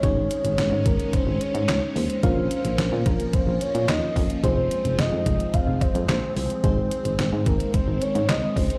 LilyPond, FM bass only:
\new Staff \with { instrumentName = "FM bass" } { \clef bass \time 4/4 \key f \minor \tempo 4 = 109 aes,,16 aes,,16 r16 aes,,16 aes,,16 aes,16 aes,,16 r8 aes,,16 r16 aes,16 des,16 r16 ees,16 r16 | bes,,16 bes,,16 r16 bes,,16 bes,,16 bes,16 bes,,16 r8 bes,,16 r16 bes,16 ees,16 r16 f,16 r16 | f,,16 f,,16 r16 f,,16 f,,16 f,16 f,,16 r8 f,,16 r16 f,16 bes,,16 r16 c,16 r16 | aes,,16 aes,,16 r16 aes,,16 aes,,16 aes,16 aes,,16 r8 aes,,16 r16 aes,16 c,16 r16 des,16 r16 | }